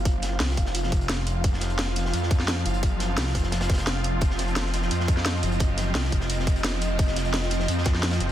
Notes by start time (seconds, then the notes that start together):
Already playing: F#1 F3 C4 F4 F5
0.05 kick, closed hi-hat
0.22 snare, closed hi-hat
0.40 C2, snare, closed hi-hat, open hi-hat
0.48 snare
0.57 F1, kick, closed hi-hat, open hi-hat
0.66 snare
0.75 closed hi-hat
0.83 snare
0.92 kick, closed hi-hat
1.01 closed hi-hat
1.09 F1, snare, closed hi-hat
1.27 closed hi-hat
1.44 F1, kick, closed hi-hat
1.53 snare
1.61 F1, snare, closed hi-hat
1.70 closed hi-hat
1.79 snare, closed hi-hat
1.86 snare
1.96 snare, closed hi-hat
2.05 snare
2.14 F2, closed hi-hat
2.22 snare
2.31 kick, closed hi-hat
2.40 snare
2.48 snare, closed hi-hat
2.57 snare
2.65 F#1, closed hi-hat
2.74 closed hi-hat
2.83 kick, closed hi-hat
3.00 snare, closed hi-hat
3.18 C2, snare, closed hi-hat, open hi-hat
3.19 snare
3.26 snare
3.35 F1, kick, snare, closed hi-hat, open hi-hat
3.43 snare
3.52 snare, closed hi-hat
3.61 snare, closed hi-hat
3.70 kick, snare, closed hi-hat
3.73 snare, closed hi-hat
3.78 snare, closed hi-hat
3.87 snare, closed hi-hat
4.04 closed hi-hat
4.21 F1 D#5, kick, closed hi-hat
4.30 snare
4.39 F1, snare, closed hi-hat
4.48 closed hi-hat
4.56 snare, closed hi-hat
4.66 snare
4.73 snare, closed hi-hat
4.82 snare
4.91 F2, closed hi-hat
5.00 snare
5.08 kick, closed hi-hat
5.17 snare
5.25 snare, closed hi-hat
5.35 snare
5.43 F#1, closed hi-hat
5.52 closed hi-hat
5.60 kick, closed hi-hat
5.77 snare, closed hi-hat
5.95 C2, snare, closed hi-hat, open hi-hat
6.04 snare
6.12 F1, kick, closed hi-hat, open hi-hat
6.21 snare
6.30 closed hi-hat
6.39 snare
6.47 kick, closed hi-hat
6.56 closed hi-hat
6.64 F1, snare, closed hi-hat
6.81 closed hi-hat
6.99 F1, kick, closed hi-hat
7.07 snare
7.16 F1, snare, closed hi-hat
7.25 closed hi-hat
7.34 snare, closed hi-hat
7.42 snare
7.51 snare, closed hi-hat
7.60 snare
7.68 F2, closed hi-hat
7.78 snare
7.85 kick, snare, closed hi-hat
7.94 snare
8.03 snare, closed hi-hat
8.11 snare, closed hi-hat
8.20 F#1, snare, closed hi-hat